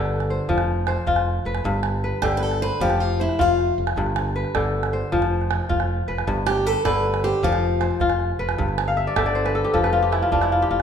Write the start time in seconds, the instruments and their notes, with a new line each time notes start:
Already playing: fingered electric bass G1, kora G2 D3 F4 B4
0.01 calabash click
0.20 calabash click
0.30 kora C5
0.49 fingered electric bass F1, kora F3, calabash thump
0.58 calabash click
0.87 kora C5, calabash click
0.97 calabash click
1.07 fingered electric bass F1, kora F4, calabash thump, calabash click
1.16 calabash click
1.26 calabash click
1.45 fingered electric bass F1, kora B4
1.55 calabash click
1.64 fingered electric bass G1, kora G2, calabash thump
1.74 calabash click
1.83 calabash click
2.04 kora B4
2.22 fingered electric bass G1, kora D3, steel-string acoustic guitar G4, calabash thump, calabash click
2.32 calabash click
2.37 steel-string acoustic guitar B4
2.43 steel-string acoustic guitar A4
2.51 calabash click
2.62 steel-string acoustic guitar B4, kora C5
2.80 fingered electric bass F1, kora F3, steel-string acoustic guitar G4, calabash thump
2.90 calabash click
3.00 steel-string acoustic guitar F4
3.20 steel-string acoustic guitar E4, kora C5
3.29 calabash click
3.39 fingered electric bass F1, kora F4, steel-string acoustic guitar F4, calabash thump, calabash click
3.58 calabash click
3.78 fingered electric bass F1
3.87 calabash click
3.96 fingered electric bass G1, kora G2, calabash thump, calabash click
4.06 calabash click
4.16 calabash click
4.36 kora B4
4.45 calabash click
4.55 fingered electric bass G1, kora D3, calabash thump, calabash click
4.83 calabash click
4.93 kora C5
5.12 fingered electric bass F1, kora F3, calabash thump, calabash click
5.22 calabash click
5.41 calabash click
5.51 calabash click
5.69 fingered electric bass F1, kora F4, calabash thump
5.80 calabash click
6.08 fingered electric bass F1, kora B4, calabash click
6.18 calabash click
6.27 fingered electric bass G1, kora G2, calabash thump
6.38 calabash click
6.46 steel-string acoustic guitar G4, calabash click
6.66 steel-string acoustic guitar A4, kora B4
6.85 fingered electric bass G1, kora D3, steel-string acoustic guitar B4, calabash thump, calabash click
6.95 calabash click
7.14 calabash click
7.24 steel-string acoustic guitar G4, kora C5
7.43 fingered electric bass F1, kora F3, steel-string acoustic guitar F4, calabash thump
7.53 calabash click
7.81 kora C5, calabash click
7.91 calabash click
8.00 fingered electric bass F1, kora F4, calabash thump, calabash click
8.10 calabash click
8.20 calabash click
8.39 fingered electric bass F1, kora B4
8.49 calabash click
8.58 fingered electric bass G1, kora G2, calabash thump
8.68 calabash click
8.78 calabash click
8.88 kora F5
8.97 kora E5
9.07 kora D5
9.16 fingered electric bass G1, kora D3 E5, calabash thump, calabash click
9.26 kora D5, calabash click
9.35 kora C5
9.45 kora B4, calabash click
9.55 kora A4
9.64 kora G4
9.74 fingered electric bass F1, kora F3 A4, calabash thump
9.84 kora B4, calabash click
9.93 kora F4
10.02 kora G4
10.12 kora E4, calabash click
10.22 kora F4, calabash click
10.32 fingered electric bass F1, kora D4 F4, calabash thump, calabash click
10.41 kora E4, calabash click
10.50 kora F4, calabash click
10.62 kora G4
10.70 fingered electric bass F1, kora F4